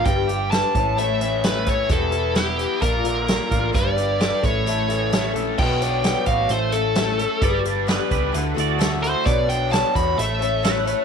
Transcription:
<<
  \new Staff \with { instrumentName = "Lead electric guitar" } { \time 4/4 \key a \mixolydian \tempo 4 = 130 g''4 a''4 e''4 b'8 cis''8 | a'4 g'4 bes'2 | d''4 d''8 cis''2 r8 | g''4. f''8 c''8 a'4.~ |
a'8 r2. c''8 | d''8 g''8 a''8 b''8 e''4 r4 | }
  \new Staff \with { instrumentName = "Clean electric guitar" } { \time 4/4 \key a \mixolydian r1 | r1 | r1 | r1 |
d''4 b'8 b'4 d''8. r8. | r2. b'4 | }
  \new Staff \with { instrumentName = "Twelve-string acoustic guitar" } { \time 4/4 \key a \mixolydian <g d' g' b'>8 <d' g' b'>8 <g d' g' b'>8 <a cis' e' cis''>8 <a, e a cis' e' cis''>8 <a cis' e' cis''>8 <a cis' e' cis''>8 <a cis' e' cis''>8 | <e g e' g' b'>8 <e' g' b'>8 <g e' g' b'>8 <e' g' b'>8 <bes, f bes d' f' bes'>8 <bes d' f' bes'>8 <bes d' f' bes'>8 <bes d' f' bes'>8 | <g d' g' b'>8 <d' g' b'>8 <g d' g' b'>8 <a cis' e' a'>8 <a, e a cis' e' a'>8 <a cis' e' a'>8 <a cis' e' a'>8 <a cis' e' a'>8 | <b, fis b d' fis' cis''>8 <b d' fis' cis''>8 <b, fis b d' fis' cis''>8 <b d' fis' cis''>8 <a cis' e' a'>8 <a cis' e' a'>8 <a, e a cis' e' a'>8 <a cis' e' a'>8 |
<g d' g' b'>8 <d' g' b'>8 <g d' g' b'>8 <d' g' b'>8 <a e' fis' a'>8 <e' fis' a'>8 <d a e' fis' a'>8 <e' fis' a'>8 | <b, fis b d' fis' cis''>8 <b d' fis' cis''>8 <b, fis b d' fis' cis''>8 <b d' fis' cis''>8 <a cis' e' cis''>8 <a cis' e' cis''>8 <a, e a cis' e' cis''>8 <a cis' e' cis''>8 | }
  \new Staff \with { instrumentName = "Overdriven electric guitar" } { \time 4/4 \key a \mixolydian g,8 g'8 d'8 a,8 a8 e8 a8 e'8 | e,8 e'8 b8 e8 bes,8 d8 bes8 f'8 | g,8 g'8 d'8 a,8 a8 e8 a8 a'8 | b,8 d'8 b8 fis'8 a8 a'8 a8 a'8 |
g8 d'8 b8 g'8 d8 fis'8 a8 fis'8 | b,8 d'8 b8 fis'8 a8 a'8 a8 a'8 | }
  \new Staff \with { instrumentName = "Picked electric bass" } { \clef bass \time 4/4 \key a \mixolydian g,,4. a,,2 a,8 | e,,2 bes,,4. a,,8 | g,,4. a,,2 bes,,8 | b,,4. a,,8 a,,2 |
g,,4. cis,8 d,8 d,4. | b,,4. e,8 a,,2 | }
  \new DrumStaff \with { instrumentName = "Drums" } \drummode { \time 4/4 <hh bd>8 hh8 <hh sn>8 <hh bd>8 hh8 hh8 <hh sn>8 <hh bd>8 | <hh bd>8 hh8 <hh sn>8 hh8 <hh bd>8 hh8 <hh sn>8 <hh bd>8 | <hh bd>8 hh8 <hh sn>8 <hh bd>8 hh8 hh8 <hh sn>8 hh8 | <cymc bd>8 hh8 <hh sn>8 <hh bd>8 hh8 hh8 <hh sn>8 hh8 |
<hh bd>8 hh8 <hh sn>8 <hh bd>8 hh8 hh8 <hh sn>8 hh8 | <hh bd>8 hh8 <hh sn>8 <hh bd>8 hh8 hh8 <hh sn>8 hh8 | }
>>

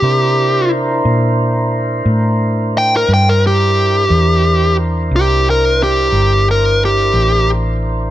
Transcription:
<<
  \new Staff \with { instrumentName = "Lead electric guitar" } { \time 12/8 \key c \major \tempo 4. = 59 g'4 r2. g''16 bes'16 g''16 bes'16 g'4~ | g'4 r8 g'8 bes'8 g'4 bes'8 g'4 r4 | }
  \new Staff \with { instrumentName = "Tonewheel organ" } { \time 12/8 \key c \major <d' e' bes' c''>1. | <d' e' bes' c''>1. | }
  \new Staff \with { instrumentName = "Fingered electric bass" } { \clef bass \time 12/8 \key c \major c4. bes,4. a,4. g,4. | e,4. c,4. g,,4. a,,4. | }
>>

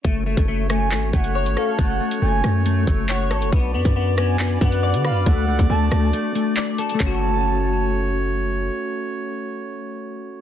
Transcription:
<<
  \new Staff \with { instrumentName = "Soft synth lead" } { \time 4/4 \key fis \minor \tempo 4 = 138 r4. gis''4 fis''4 eis''8 | fis''4 gis''4 r4 fis''8 cis''8 | r4. gis''4 fis''4 eis''8 | fis''4 a''4 r2 |
a''2. r4 | r1 | }
  \new Staff \with { instrumentName = "Brass ensemble" } { \time 4/4 \key fis \minor << { <fis' cis''>1~ | <fis' cis''>1 | <fis' d''>1~ | <fis' d''>1 |
<a cis' fis' cis''>1~ | <a cis' fis' cis''>1 | } \\ { <a cis'>1~ | <a cis'>1 | <b d'>1 | <a d'>1 |
r1 | r1 | } >> }
  \new Staff \with { instrumentName = "Clean electric guitar" } { \time 4/4 \key fis \minor a8 a8 a8 a8 a8 a8 cis''8 a'8 | a8 a8 a8 a8 a8 a8 cis''8 a'8 | b8 b8 b8 b8 b8 b8 d''8 b'8 | a8 a8 a8 a8 a8 a8 d''8 a'8 |
<a cis' fis'>1~ | <a cis' fis'>1 | }
  \new Staff \with { instrumentName = "808-style bass" } { \clef bass \time 4/4 \key fis \minor fis,,8. fis,,4~ fis,,16 gis,,8 fis,,8. gis,,16 r8 | fis,,8 r8 fis,,8 fis,4 fis,,4 gis,,16 fis,,16 | b,,8 fis,16 fis,4.~ fis,16 fis,8. d16. fis,16. | d,8 cis,16 d,16 d,8 d,8 r2 |
fis,,1 | r1 | }
  \new DrumStaff \with { instrumentName = "Drums" } \drummode { \time 4/4 <hh bd>8. <hh bd>16 r8 <hh ss>8 hc8 <hh bd>16 hh16 r16 hh16 ss8 | <hh bd>8. hh16 r8 <hh ss>8 hh8 <hh bd>8 hc8 <hh ss>16 hh16 | <hh bd>8. <hh bd>16 r8 <hh ss>8 hc8 <hh bd>16 hh16 r16 hh16 ss8 | <hh bd>8. <hh bd>16 r8 <hh ss>8 hh8 hh8 hc8 hh16 hh16 |
<hc bd>4 r4 r4 r4 | r4 r4 r4 r4 | }
>>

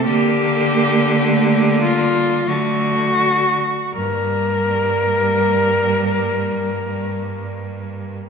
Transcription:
<<
  \new Staff \with { instrumentName = "Cello" } { \time 3/4 \key g \minor \tempo 4 = 41 g'4. f'8 fis'4 | bes'2. | }
  \new Staff \with { instrumentName = "Cello" } { \time 3/4 \key g \minor bes4 a8 g8 fis8 r8 | bes2. | }
  \new Staff \with { instrumentName = "Cello" } { \time 3/4 \key g \minor bes2 a4 | g2. | }
  \new Staff \with { instrumentName = "Cello" } { \clef bass \time 3/4 \key g \minor d2 d4 | g,2. | }
>>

